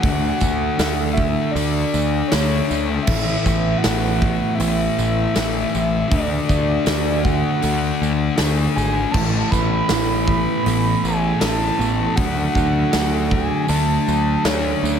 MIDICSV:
0, 0, Header, 1, 7, 480
1, 0, Start_track
1, 0, Tempo, 758534
1, 22, Time_signature, 4, 2, 24, 8
1, 9489, End_track
2, 0, Start_track
2, 0, Title_t, "Soft synth lead"
2, 0, Program_c, 0, 80
2, 0, Note_on_c, 0, 78, 111
2, 704, Note_off_c, 0, 78, 0
2, 716, Note_on_c, 0, 76, 100
2, 957, Note_on_c, 0, 74, 103
2, 967, Note_off_c, 0, 76, 0
2, 1440, Note_on_c, 0, 73, 97
2, 1450, Note_off_c, 0, 74, 0
2, 1811, Note_off_c, 0, 73, 0
2, 1915, Note_on_c, 0, 76, 108
2, 2391, Note_on_c, 0, 78, 105
2, 2401, Note_off_c, 0, 76, 0
2, 2879, Note_on_c, 0, 76, 104
2, 2889, Note_off_c, 0, 78, 0
2, 3859, Note_on_c, 0, 74, 100
2, 3869, Note_off_c, 0, 76, 0
2, 4580, Note_on_c, 0, 78, 100
2, 4590, Note_off_c, 0, 74, 0
2, 5302, Note_off_c, 0, 78, 0
2, 5542, Note_on_c, 0, 80, 101
2, 5767, Note_on_c, 0, 81, 108
2, 5777, Note_off_c, 0, 80, 0
2, 6018, Note_on_c, 0, 83, 123
2, 6028, Note_off_c, 0, 81, 0
2, 6480, Note_off_c, 0, 83, 0
2, 6484, Note_on_c, 0, 83, 123
2, 6975, Note_on_c, 0, 80, 104
2, 6984, Note_off_c, 0, 83, 0
2, 7212, Note_on_c, 0, 81, 120
2, 7222, Note_off_c, 0, 80, 0
2, 7693, Note_on_c, 0, 78, 104
2, 7702, Note_off_c, 0, 81, 0
2, 7938, Note_off_c, 0, 78, 0
2, 7948, Note_on_c, 0, 78, 110
2, 8431, Note_on_c, 0, 80, 100
2, 8440, Note_off_c, 0, 78, 0
2, 8662, Note_on_c, 0, 81, 106
2, 8671, Note_off_c, 0, 80, 0
2, 9144, Note_on_c, 0, 73, 97
2, 9153, Note_off_c, 0, 81, 0
2, 9489, Note_off_c, 0, 73, 0
2, 9489, End_track
3, 0, Start_track
3, 0, Title_t, "Clean electric guitar"
3, 0, Program_c, 1, 27
3, 1948, Note_on_c, 1, 52, 82
3, 1954, Note_on_c, 1, 59, 80
3, 1963, Note_on_c, 1, 64, 84
3, 3855, Note_off_c, 1, 52, 0
3, 3857, Note_on_c, 1, 50, 67
3, 3866, Note_off_c, 1, 59, 0
3, 3868, Note_on_c, 1, 57, 72
3, 3874, Note_off_c, 1, 64, 0
3, 3877, Note_on_c, 1, 66, 85
3, 5781, Note_off_c, 1, 50, 0
3, 5781, Note_on_c, 1, 45, 75
3, 5789, Note_on_c, 1, 52, 82
3, 5791, Note_off_c, 1, 66, 0
3, 5792, Note_off_c, 1, 57, 0
3, 5795, Note_on_c, 1, 59, 77
3, 5800, Note_on_c, 1, 61, 81
3, 5803, Note_on_c, 1, 64, 81
3, 7695, Note_off_c, 1, 52, 0
3, 7702, Note_off_c, 1, 45, 0
3, 7703, Note_off_c, 1, 59, 0
3, 7713, Note_off_c, 1, 64, 0
3, 7717, Note_off_c, 1, 61, 0
3, 7718, Note_on_c, 1, 66, 79
3, 9489, Note_off_c, 1, 66, 0
3, 9489, End_track
4, 0, Start_track
4, 0, Title_t, "Distorted electric guitar"
4, 0, Program_c, 2, 30
4, 15, Note_on_c, 2, 50, 90
4, 24, Note_on_c, 2, 57, 106
4, 29, Note_on_c, 2, 62, 98
4, 485, Note_off_c, 2, 50, 0
4, 492, Note_on_c, 2, 50, 83
4, 498, Note_off_c, 2, 57, 0
4, 500, Note_on_c, 2, 57, 79
4, 501, Note_off_c, 2, 62, 0
4, 509, Note_on_c, 2, 62, 81
4, 969, Note_off_c, 2, 50, 0
4, 976, Note_on_c, 2, 50, 108
4, 979, Note_off_c, 2, 57, 0
4, 979, Note_off_c, 2, 62, 0
4, 981, Note_on_c, 2, 57, 98
4, 987, Note_on_c, 2, 62, 116
4, 1454, Note_off_c, 2, 50, 0
4, 1461, Note_on_c, 2, 50, 81
4, 1468, Note_off_c, 2, 57, 0
4, 1468, Note_off_c, 2, 62, 0
4, 1471, Note_on_c, 2, 57, 92
4, 1475, Note_on_c, 2, 62, 88
4, 1927, Note_off_c, 2, 50, 0
4, 1934, Note_off_c, 2, 62, 0
4, 1940, Note_on_c, 2, 45, 89
4, 1946, Note_off_c, 2, 57, 0
4, 1948, Note_on_c, 2, 52, 100
4, 1953, Note_on_c, 2, 57, 95
4, 2416, Note_off_c, 2, 45, 0
4, 2424, Note_on_c, 2, 45, 72
4, 2426, Note_off_c, 2, 52, 0
4, 2433, Note_on_c, 2, 52, 77
4, 2435, Note_off_c, 2, 57, 0
4, 2438, Note_on_c, 2, 57, 91
4, 2895, Note_off_c, 2, 45, 0
4, 2902, Note_off_c, 2, 52, 0
4, 2902, Note_on_c, 2, 45, 106
4, 2910, Note_on_c, 2, 52, 107
4, 2913, Note_off_c, 2, 57, 0
4, 2916, Note_on_c, 2, 57, 114
4, 3378, Note_off_c, 2, 45, 0
4, 3382, Note_off_c, 2, 52, 0
4, 3385, Note_on_c, 2, 45, 73
4, 3390, Note_on_c, 2, 52, 81
4, 3398, Note_off_c, 2, 57, 0
4, 3400, Note_on_c, 2, 57, 89
4, 3850, Note_off_c, 2, 45, 0
4, 3852, Note_off_c, 2, 52, 0
4, 3854, Note_on_c, 2, 50, 88
4, 3865, Note_off_c, 2, 57, 0
4, 3865, Note_on_c, 2, 57, 92
4, 3871, Note_on_c, 2, 62, 103
4, 4332, Note_off_c, 2, 50, 0
4, 4340, Note_on_c, 2, 50, 74
4, 4344, Note_off_c, 2, 57, 0
4, 4344, Note_off_c, 2, 62, 0
4, 4346, Note_on_c, 2, 57, 86
4, 4352, Note_on_c, 2, 62, 84
4, 4811, Note_off_c, 2, 50, 0
4, 4818, Note_on_c, 2, 50, 103
4, 4826, Note_off_c, 2, 57, 0
4, 4829, Note_on_c, 2, 57, 97
4, 4831, Note_off_c, 2, 62, 0
4, 4839, Note_on_c, 2, 62, 101
4, 5284, Note_off_c, 2, 50, 0
4, 5292, Note_on_c, 2, 50, 79
4, 5302, Note_off_c, 2, 57, 0
4, 5303, Note_off_c, 2, 62, 0
4, 5305, Note_on_c, 2, 57, 77
4, 5311, Note_on_c, 2, 62, 83
4, 5763, Note_off_c, 2, 50, 0
4, 5772, Note_on_c, 2, 45, 91
4, 5773, Note_off_c, 2, 62, 0
4, 5781, Note_off_c, 2, 57, 0
4, 5783, Note_on_c, 2, 52, 97
4, 5787, Note_on_c, 2, 57, 94
4, 6256, Note_off_c, 2, 45, 0
4, 6263, Note_off_c, 2, 52, 0
4, 6263, Note_on_c, 2, 45, 85
4, 6271, Note_on_c, 2, 52, 86
4, 6275, Note_off_c, 2, 57, 0
4, 6278, Note_on_c, 2, 57, 80
4, 6724, Note_off_c, 2, 45, 0
4, 6731, Note_on_c, 2, 45, 99
4, 6736, Note_off_c, 2, 52, 0
4, 6743, Note_on_c, 2, 52, 104
4, 6747, Note_off_c, 2, 57, 0
4, 6750, Note_on_c, 2, 57, 110
4, 7210, Note_off_c, 2, 45, 0
4, 7218, Note_off_c, 2, 52, 0
4, 7218, Note_on_c, 2, 45, 74
4, 7226, Note_on_c, 2, 52, 78
4, 7231, Note_off_c, 2, 57, 0
4, 7234, Note_on_c, 2, 57, 82
4, 7686, Note_off_c, 2, 45, 0
4, 7690, Note_off_c, 2, 52, 0
4, 7699, Note_on_c, 2, 50, 96
4, 7708, Note_off_c, 2, 57, 0
4, 7708, Note_on_c, 2, 57, 91
4, 7714, Note_on_c, 2, 62, 97
4, 8166, Note_off_c, 2, 50, 0
4, 8174, Note_on_c, 2, 50, 84
4, 8181, Note_off_c, 2, 62, 0
4, 8183, Note_off_c, 2, 57, 0
4, 8185, Note_on_c, 2, 57, 77
4, 8189, Note_on_c, 2, 62, 81
4, 8640, Note_off_c, 2, 50, 0
4, 8647, Note_on_c, 2, 50, 107
4, 8655, Note_off_c, 2, 57, 0
4, 8656, Note_off_c, 2, 62, 0
4, 8658, Note_on_c, 2, 57, 112
4, 8663, Note_on_c, 2, 62, 113
4, 9129, Note_off_c, 2, 50, 0
4, 9137, Note_on_c, 2, 50, 78
4, 9145, Note_off_c, 2, 62, 0
4, 9146, Note_off_c, 2, 57, 0
4, 9149, Note_on_c, 2, 57, 89
4, 9153, Note_on_c, 2, 62, 90
4, 9489, Note_off_c, 2, 50, 0
4, 9489, Note_off_c, 2, 57, 0
4, 9489, Note_off_c, 2, 62, 0
4, 9489, End_track
5, 0, Start_track
5, 0, Title_t, "Clean electric guitar"
5, 0, Program_c, 3, 27
5, 5786, Note_on_c, 3, 52, 77
5, 6015, Note_off_c, 3, 52, 0
5, 6023, Note_on_c, 3, 52, 69
5, 6256, Note_off_c, 3, 52, 0
5, 6263, Note_on_c, 3, 52, 76
5, 6497, Note_off_c, 3, 52, 0
5, 6505, Note_on_c, 3, 52, 76
5, 6734, Note_on_c, 3, 59, 75
5, 6964, Note_off_c, 3, 52, 0
5, 6972, Note_on_c, 3, 52, 75
5, 7213, Note_on_c, 3, 61, 80
5, 7449, Note_off_c, 3, 59, 0
5, 7456, Note_on_c, 3, 59, 74
5, 7698, Note_off_c, 3, 52, 0
5, 7700, Note_off_c, 3, 59, 0
5, 7708, Note_on_c, 3, 54, 78
5, 7931, Note_off_c, 3, 54, 0
5, 7939, Note_on_c, 3, 54, 66
5, 8179, Note_off_c, 3, 54, 0
5, 8186, Note_on_c, 3, 54, 74
5, 8420, Note_off_c, 3, 54, 0
5, 8428, Note_on_c, 3, 54, 73
5, 8665, Note_on_c, 3, 57, 77
5, 8893, Note_off_c, 3, 54, 0
5, 8900, Note_on_c, 3, 54, 76
5, 9380, Note_off_c, 3, 57, 0
5, 9382, Note_on_c, 3, 57, 76
5, 9428, Note_off_c, 3, 61, 0
5, 9489, Note_off_c, 3, 54, 0
5, 9489, Note_off_c, 3, 57, 0
5, 9489, End_track
6, 0, Start_track
6, 0, Title_t, "Picked electric bass"
6, 0, Program_c, 4, 34
6, 21, Note_on_c, 4, 38, 95
6, 196, Note_off_c, 4, 38, 0
6, 265, Note_on_c, 4, 38, 88
6, 438, Note_off_c, 4, 38, 0
6, 499, Note_on_c, 4, 38, 94
6, 848, Note_off_c, 4, 38, 0
6, 982, Note_on_c, 4, 38, 95
6, 1156, Note_off_c, 4, 38, 0
6, 1226, Note_on_c, 4, 38, 101
6, 1399, Note_off_c, 4, 38, 0
6, 1474, Note_on_c, 4, 38, 88
6, 1644, Note_off_c, 4, 38, 0
6, 1712, Note_on_c, 4, 38, 92
6, 1883, Note_off_c, 4, 38, 0
6, 1945, Note_on_c, 4, 33, 88
6, 2118, Note_off_c, 4, 33, 0
6, 2188, Note_on_c, 4, 33, 93
6, 2360, Note_off_c, 4, 33, 0
6, 2438, Note_on_c, 4, 33, 99
6, 2781, Note_off_c, 4, 33, 0
6, 2910, Note_on_c, 4, 33, 99
6, 3081, Note_off_c, 4, 33, 0
6, 3152, Note_on_c, 4, 33, 97
6, 3323, Note_off_c, 4, 33, 0
6, 3393, Note_on_c, 4, 33, 92
6, 3563, Note_off_c, 4, 33, 0
6, 3638, Note_on_c, 4, 33, 97
6, 3807, Note_off_c, 4, 33, 0
6, 3869, Note_on_c, 4, 38, 85
6, 4041, Note_off_c, 4, 38, 0
6, 4109, Note_on_c, 4, 38, 89
6, 4281, Note_off_c, 4, 38, 0
6, 4345, Note_on_c, 4, 38, 98
6, 4693, Note_off_c, 4, 38, 0
6, 4831, Note_on_c, 4, 38, 94
6, 5002, Note_off_c, 4, 38, 0
6, 5071, Note_on_c, 4, 38, 93
6, 5243, Note_off_c, 4, 38, 0
6, 5309, Note_on_c, 4, 38, 81
6, 5481, Note_off_c, 4, 38, 0
6, 5548, Note_on_c, 4, 32, 88
6, 5721, Note_off_c, 4, 32, 0
6, 5786, Note_on_c, 4, 33, 96
6, 5959, Note_off_c, 4, 33, 0
6, 6024, Note_on_c, 4, 33, 88
6, 6198, Note_off_c, 4, 33, 0
6, 6265, Note_on_c, 4, 33, 93
6, 6613, Note_off_c, 4, 33, 0
6, 6748, Note_on_c, 4, 33, 96
6, 6920, Note_off_c, 4, 33, 0
6, 6984, Note_on_c, 4, 33, 96
6, 7158, Note_off_c, 4, 33, 0
6, 7225, Note_on_c, 4, 33, 88
6, 7399, Note_off_c, 4, 33, 0
6, 7460, Note_on_c, 4, 33, 94
6, 7636, Note_off_c, 4, 33, 0
6, 7706, Note_on_c, 4, 38, 96
6, 7879, Note_off_c, 4, 38, 0
6, 7946, Note_on_c, 4, 38, 89
6, 8119, Note_off_c, 4, 38, 0
6, 8188, Note_on_c, 4, 38, 97
6, 8535, Note_off_c, 4, 38, 0
6, 8664, Note_on_c, 4, 38, 95
6, 8838, Note_off_c, 4, 38, 0
6, 8910, Note_on_c, 4, 38, 102
6, 9082, Note_off_c, 4, 38, 0
6, 9143, Note_on_c, 4, 38, 86
6, 9318, Note_off_c, 4, 38, 0
6, 9382, Note_on_c, 4, 38, 89
6, 9489, Note_off_c, 4, 38, 0
6, 9489, End_track
7, 0, Start_track
7, 0, Title_t, "Drums"
7, 20, Note_on_c, 9, 46, 65
7, 22, Note_on_c, 9, 36, 118
7, 83, Note_off_c, 9, 46, 0
7, 85, Note_off_c, 9, 36, 0
7, 256, Note_on_c, 9, 54, 82
7, 262, Note_on_c, 9, 36, 82
7, 319, Note_off_c, 9, 54, 0
7, 325, Note_off_c, 9, 36, 0
7, 501, Note_on_c, 9, 54, 97
7, 502, Note_on_c, 9, 46, 71
7, 503, Note_on_c, 9, 38, 127
7, 564, Note_off_c, 9, 54, 0
7, 566, Note_off_c, 9, 38, 0
7, 566, Note_off_c, 9, 46, 0
7, 744, Note_on_c, 9, 36, 86
7, 807, Note_off_c, 9, 36, 0
7, 988, Note_on_c, 9, 54, 79
7, 989, Note_on_c, 9, 46, 70
7, 1051, Note_off_c, 9, 54, 0
7, 1052, Note_off_c, 9, 46, 0
7, 1227, Note_on_c, 9, 54, 80
7, 1291, Note_off_c, 9, 54, 0
7, 1466, Note_on_c, 9, 38, 122
7, 1466, Note_on_c, 9, 46, 73
7, 1472, Note_on_c, 9, 54, 104
7, 1529, Note_off_c, 9, 46, 0
7, 1530, Note_off_c, 9, 38, 0
7, 1535, Note_off_c, 9, 54, 0
7, 1713, Note_on_c, 9, 54, 78
7, 1777, Note_off_c, 9, 54, 0
7, 1944, Note_on_c, 9, 49, 110
7, 1947, Note_on_c, 9, 36, 122
7, 2007, Note_off_c, 9, 49, 0
7, 2010, Note_off_c, 9, 36, 0
7, 2189, Note_on_c, 9, 36, 83
7, 2193, Note_on_c, 9, 54, 82
7, 2252, Note_off_c, 9, 36, 0
7, 2256, Note_off_c, 9, 54, 0
7, 2429, Note_on_c, 9, 46, 71
7, 2430, Note_on_c, 9, 38, 125
7, 2431, Note_on_c, 9, 54, 106
7, 2492, Note_off_c, 9, 46, 0
7, 2493, Note_off_c, 9, 38, 0
7, 2494, Note_off_c, 9, 54, 0
7, 2670, Note_on_c, 9, 36, 96
7, 2733, Note_off_c, 9, 36, 0
7, 2909, Note_on_c, 9, 46, 64
7, 2913, Note_on_c, 9, 54, 83
7, 2972, Note_off_c, 9, 46, 0
7, 2977, Note_off_c, 9, 54, 0
7, 3156, Note_on_c, 9, 54, 82
7, 3220, Note_off_c, 9, 54, 0
7, 3389, Note_on_c, 9, 54, 90
7, 3390, Note_on_c, 9, 46, 66
7, 3391, Note_on_c, 9, 38, 117
7, 3452, Note_off_c, 9, 54, 0
7, 3454, Note_off_c, 9, 38, 0
7, 3454, Note_off_c, 9, 46, 0
7, 3636, Note_on_c, 9, 54, 77
7, 3700, Note_off_c, 9, 54, 0
7, 3868, Note_on_c, 9, 46, 65
7, 3870, Note_on_c, 9, 36, 117
7, 3931, Note_off_c, 9, 46, 0
7, 3933, Note_off_c, 9, 36, 0
7, 4109, Note_on_c, 9, 36, 84
7, 4112, Note_on_c, 9, 54, 77
7, 4173, Note_off_c, 9, 36, 0
7, 4175, Note_off_c, 9, 54, 0
7, 4342, Note_on_c, 9, 54, 94
7, 4345, Note_on_c, 9, 46, 69
7, 4346, Note_on_c, 9, 38, 124
7, 4405, Note_off_c, 9, 54, 0
7, 4409, Note_off_c, 9, 38, 0
7, 4409, Note_off_c, 9, 46, 0
7, 4587, Note_on_c, 9, 36, 92
7, 4594, Note_on_c, 9, 54, 30
7, 4650, Note_off_c, 9, 36, 0
7, 4657, Note_off_c, 9, 54, 0
7, 4824, Note_on_c, 9, 46, 64
7, 4831, Note_on_c, 9, 54, 83
7, 4887, Note_off_c, 9, 46, 0
7, 4894, Note_off_c, 9, 54, 0
7, 5082, Note_on_c, 9, 54, 76
7, 5145, Note_off_c, 9, 54, 0
7, 5300, Note_on_c, 9, 46, 74
7, 5301, Note_on_c, 9, 38, 124
7, 5317, Note_on_c, 9, 54, 96
7, 5364, Note_off_c, 9, 38, 0
7, 5364, Note_off_c, 9, 46, 0
7, 5380, Note_off_c, 9, 54, 0
7, 5555, Note_on_c, 9, 54, 71
7, 5618, Note_off_c, 9, 54, 0
7, 5785, Note_on_c, 9, 36, 115
7, 5785, Note_on_c, 9, 57, 107
7, 5848, Note_off_c, 9, 57, 0
7, 5849, Note_off_c, 9, 36, 0
7, 6025, Note_on_c, 9, 36, 84
7, 6032, Note_on_c, 9, 54, 73
7, 6088, Note_off_c, 9, 36, 0
7, 6095, Note_off_c, 9, 54, 0
7, 6258, Note_on_c, 9, 46, 72
7, 6259, Note_on_c, 9, 38, 127
7, 6268, Note_on_c, 9, 54, 92
7, 6321, Note_off_c, 9, 46, 0
7, 6322, Note_off_c, 9, 38, 0
7, 6331, Note_off_c, 9, 54, 0
7, 6503, Note_on_c, 9, 36, 91
7, 6566, Note_off_c, 9, 36, 0
7, 6745, Note_on_c, 9, 46, 64
7, 6757, Note_on_c, 9, 54, 73
7, 6808, Note_off_c, 9, 46, 0
7, 6820, Note_off_c, 9, 54, 0
7, 6991, Note_on_c, 9, 54, 66
7, 7054, Note_off_c, 9, 54, 0
7, 7221, Note_on_c, 9, 38, 114
7, 7221, Note_on_c, 9, 46, 66
7, 7223, Note_on_c, 9, 54, 86
7, 7284, Note_off_c, 9, 46, 0
7, 7285, Note_off_c, 9, 38, 0
7, 7286, Note_off_c, 9, 54, 0
7, 7475, Note_on_c, 9, 54, 67
7, 7538, Note_off_c, 9, 54, 0
7, 7701, Note_on_c, 9, 46, 62
7, 7704, Note_on_c, 9, 36, 122
7, 7764, Note_off_c, 9, 46, 0
7, 7768, Note_off_c, 9, 36, 0
7, 7944, Note_on_c, 9, 36, 88
7, 7956, Note_on_c, 9, 54, 67
7, 8007, Note_off_c, 9, 36, 0
7, 8019, Note_off_c, 9, 54, 0
7, 8182, Note_on_c, 9, 38, 127
7, 8182, Note_on_c, 9, 46, 68
7, 8182, Note_on_c, 9, 54, 85
7, 8245, Note_off_c, 9, 46, 0
7, 8245, Note_off_c, 9, 54, 0
7, 8246, Note_off_c, 9, 38, 0
7, 8425, Note_on_c, 9, 36, 86
7, 8488, Note_off_c, 9, 36, 0
7, 8658, Note_on_c, 9, 54, 73
7, 8664, Note_on_c, 9, 46, 65
7, 8722, Note_off_c, 9, 54, 0
7, 8727, Note_off_c, 9, 46, 0
7, 8912, Note_on_c, 9, 54, 74
7, 8976, Note_off_c, 9, 54, 0
7, 9144, Note_on_c, 9, 38, 122
7, 9144, Note_on_c, 9, 46, 66
7, 9148, Note_on_c, 9, 54, 88
7, 9207, Note_off_c, 9, 46, 0
7, 9208, Note_off_c, 9, 38, 0
7, 9211, Note_off_c, 9, 54, 0
7, 9399, Note_on_c, 9, 54, 76
7, 9462, Note_off_c, 9, 54, 0
7, 9489, End_track
0, 0, End_of_file